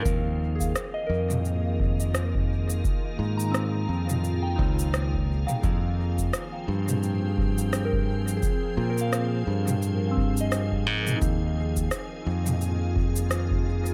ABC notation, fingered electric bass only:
X:1
M:4/4
L:1/8
Q:"Swing 16ths" 1/4=86
K:Ebmix
V:1 name="Fingered electric bass" clef=bass
E,,2 z F,,4- F,, | z A,,2 F,,2 D,,2 z | F,,2 z G,,4- G,, | z B,,2 G,,4 A,, |
E,,2 z F,,4- F,, |]